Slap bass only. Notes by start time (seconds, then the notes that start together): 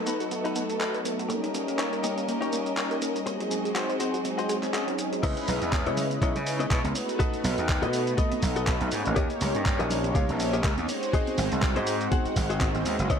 5.23 C#2
5.48 B1
5.62 E2
5.87 C#3
6.22 B1
6.36 C#3
6.71 B2
6.84 C#2
7.44 B1
7.58 D#2
7.83 B2
8.32 muted slap bass stroke
8.43 B1
8.81 B1
8.92 G#2
9.07 A1
9.17 D#2
9.41 C#2
9.55 G2
9.80 A#1
10.15 C#2
10.30 A#1
10.64 C#2
10.78 D#2
11.38 G#1
11.52 C2
11.76 G#2
12.25 muted slap bass stroke
12.36 G#1
12.75 G#1
12.85 D#2
12.99 F#1
13.10 C#2